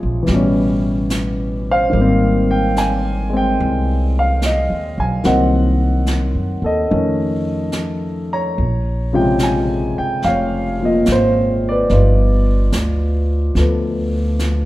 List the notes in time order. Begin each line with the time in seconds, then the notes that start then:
Already playing: C3 C#3 F3 G#3 G#4 C#5
0.03 A#1
0.23 E3 G3, brush sweep, snare
0.28 A1 B2
0.34 C#4
1.10 snare, hi-hat pedal
1.71 C5 F5
1.90 G#1 D#3 G3
1.94 A#3, brush sweep
2.01 C4
2.51 G5
2.77 G#5, snare, hi-hat pedal
3.30 G#3 C4
3.37 G5
3.59 C2, brush sweep
4.19 F5
4.42 D#5, snare, hi-hat pedal
4.70 D#2
4.98 B1 G#5
5.24 C2 D#3 F#3 A#3 C4 F#5, brush sweep, snare
5.28 D#5
6.07 snare, hi-hat pedal
6.34 F#2
6.62 D#2 A4 D#5
6.89 F2 D#3 A3 C#4 D#4, brush sweep
7.72 snare, hi-hat pedal
8.33 C#5 A#5
8.55 A#1, brush sweep
9.13 C3 C#3 F3 G#3 G5
9.39 snare, hi-hat pedal
9.43 G#5
9.98 G5, muted upright bass stroke
10.22 F1 F5, brush sweep, snare
10.28 C#5
10.81 A#2 F3
10.85 D#5
11.06 G#1, snare, hi-hat pedal
11.12 C5
11.69 B4 D5
11.89 G1 F3 B3 D#4 F4, brush sweep, snare
12.72 D2, snare, hi-hat pedal
13.55 D2 F3 A3, brush sweep, snare
13.59 B3
14.39 snare, hi-hat pedal